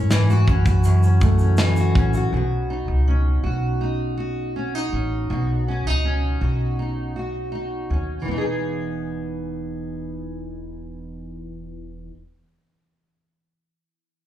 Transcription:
Already playing: F#2 G#2 E3 C#4
0.11 E3, snare, shaker
0.30 F#4, shaker
0.47 F#2 C#4, kick, shaker
0.66 F#4, kick, shaker
0.84 F#2, shaker
1.03 C#4, shaker
1.21 A3, kick, shaker
1.39 C#4, shaker
1.57 E3, snare, shaker
1.76 F#4, shaker
1.95 A1 C#4, kick, shaker
2.13 F#4, shaker
2.32 B1 B2 F#4
2.70 D#4
2.88 C#2
3.08 C#4
3.43 B1 F#4
3.81 D#4
4.17 F#4
4.56 C#4
4.75 D#4
4.92 A1 C#4
5.30 B1 B2 F#4
5.68 C#4
5.86 C#2 D#4
6.05 C#4
6.41 B1 F#4
6.79 D#4
7.16 F#4
7.52 D#4
7.90 D#2 C#4
8.22 E3
8.27 E1 B3
8.33 D#4
8.38 G#4

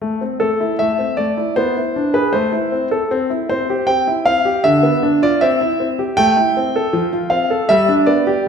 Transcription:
0.01 A3
0.21 C4
0.40 A3 A4
0.60 E4
0.79 A3 E5
0.99 C4
1.17 A3 D5
1.37 E4
1.56 B3 C5
1.77 E4
1.96 D4
2.14 G#4 B4
2.33 A3 C5
2.52 E4
2.72 C4
2.91 A4
3.11 C4
3.30 E4
3.49 C4 C5
3.70 G4
3.87 C4 G5
4.07 E4
4.26 C4 F5
4.45 G4
4.64 D3 E5
4.83 B3
5.03 D4
5.22 F4 D5
5.41 C4 E5
5.61 E4
5.80 C4
5.99 G4
6.17 A3 G5
6.37 E4
6.57 C4
6.76 A4
6.93 F3
7.13 F4
7.30 C4 F5
7.50 A4
7.69 G3 E5
7.89 D4
8.06 B3 D5
8.27 G4

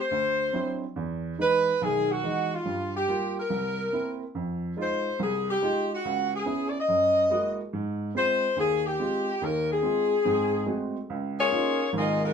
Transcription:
0.00 C5
0.11 D2
0.53 F#3 C4 D4 E4
0.96 E2
1.38 E3 G#3 D#4 B4
1.81 B1 D#3 G#4
2.11 F#4
2.23 E3 G#3 D#4
2.54 F4
2.65 G2 G3
2.96 G4
3.08 G3 A#3 F4
3.39 A#4
3.50 C2
3.92 A#3 C4 E4
4.35 F2
4.77 G#3 D#4 F4
4.81 C5
5.19 C2 G#4
5.50 G4
5.62 G#3 D#4 F4
5.94 F#4
6.05 C#2
6.36 G#4
6.46 B3 C#4 E4
6.68 D5
6.79 D#5
6.88 F#2
7.30 G#3 A#3 E4 F#4
7.73 G#2
8.15 G#3 C4 F4 C5
8.56 D#2 G#4
8.86 G4
8.99 G#3 C4 F4
9.42 D#2 D#3 A#4
9.72 G#4
9.82 G#3 C4 F4
10.25 G#2 C4
10.66 G#3 A3 C4 F#4
11.10 C#2
11.39 A#3 F4 G#4 C#5
11.51 A#3 C#4 D#4 F4
11.93 G#1 G#2
11.97 A#3 F4 G#4 D#5
12.25 G#3 D#4 F4 A#4

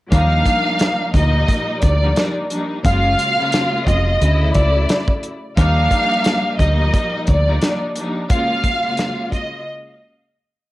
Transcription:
0.11 D#2 F3 G3 A#3 D4 D#4 F5, kick, closed hi-hat
0.46 kick, closed hi-hat
0.79 snare, closed hi-hat
1.13 D2 A#2 F3 G3 A#3 D#4 D#5, kick, closed hi-hat
1.48 kick, closed hi-hat
1.82 D2 D5, kick, closed hi-hat
2.00 D3 F3 G3 A#3 D#4
2.15 F3 G3 A#3 D4 D#4, snare, closed hi-hat
2.50 F3 G3 A#3 D4 D#4, closed hi-hat
2.82 F#1 C#3 F#3 G#3 A#3 F4 F5, kick, closed hi-hat
3.19 closed hi-hat
3.37 C#3 F#3 G#3 A#3 F4
3.52 snare, closed hi-hat
3.86 F1 D#5, kick, closed hi-hat
4.20 D2 C#3 F#3 A3 E4, closed hi-hat
4.54 C#2 D5, kick, closed hi-hat
4.89 snare, closed hi-hat
5.08 kick
5.23 closed hi-hat
5.57 D#2 F3 G3 A#3 D4 D#4 F5, kick, closed hi-hat
5.91 kick, closed hi-hat
6.24 snare, closed hi-hat
6.58 D2 A#2 F3 G3 A#3 D#4 D#5, kick, closed hi-hat
6.94 kick, closed hi-hat
7.27 D2 D5, kick, closed hi-hat
7.46 D3 F3 G3 A#3 D#4
7.60 F3 G3 A#3 D4 D#4, snare, closed hi-hat
7.96 F3 G3 A#3 D4 D#4, closed hi-hat
8.28 C#3 F#3 G#3 A#3 F4 F5, kick, closed hi-hat
8.64 kick, closed hi-hat
8.83 C#3 F#3 G#3 A#3 F4
8.97 snare, closed hi-hat
9.32 D#5, kick, closed hi-hat

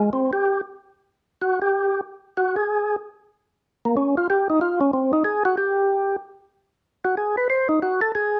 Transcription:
0.00 G#3
0.13 C4
0.33 G4
1.42 F#4
1.62 G4
2.37 F#4
2.56 G#4
3.85 A#3
3.97 C#4
4.17 F4
4.30 G4
4.50 D#4
4.61 F4
4.81 C#4
4.93 C4
5.13 D#4
5.24 G#4
5.45 F#4
5.57 G4
7.05 F#4
7.17 G#4
7.37 B4
7.50 C5
7.69 D#4
7.82 F#4
8.01 A4
8.15 G#4

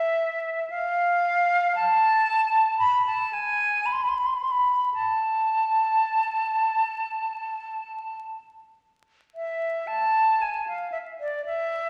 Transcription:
Already playing: E5
0.70 F5
1.75 A5
2.79 B5
3.06 A5
3.33 G#5
3.86 B5
3.92 C6
4.02 B5
4.09 C6
4.17 B5
4.26 C6
4.35 B5
4.43 C6
4.51 B5
4.94 A5
9.35 E5
9.87 A5
10.42 G#5
10.67 F5
10.92 E5
11.20 D5
11.45 E5

